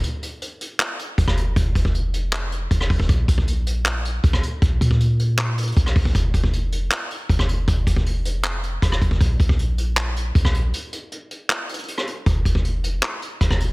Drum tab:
HH |x---x---x---x---x---x---x---x---|x---x---x---x---x---x---x---o---|x---x---x---x---x---x---x---x---|x---x---x---x---x---xxxxx---o---|
CP |----------------x---------------|----------------x---------------|----------------x---------------|----------------x---------------|
SD |--------------------------r-----|--------------------------r-----|--------------------------r-----|--------------------------r-----|
BD |------------------------o-o-----|o---o-o-----------------o---o-o-|o---o-o-----------------o-o-----|o---o-o-----------------o---o-o-|

HH |x---x---x---x---x---x---x---x---|x---x---x---x---x---x---x---x---|x---x---x---x-------x---x---x---|x---x---x---x---x---xxxxx---x---|
CP |----------------x---------------|----------------x---------------|----------------x---------------|----------------x---------------|
SD |--------------------------r-----|------------------------r-r-----|--------------------------r-----|--------------------------r-----|
BD |o---o-o-----------------o-o-----|o---o-o-----------------o---o-o-|o---o-o-----------------o-o-----|--------------------------------|

HH |x---x---x---x---x---x---x---x---|
CP |----------------x---------------|
SD |------------------------r-r-----|
BD |o---o-o-----------------o-o-----|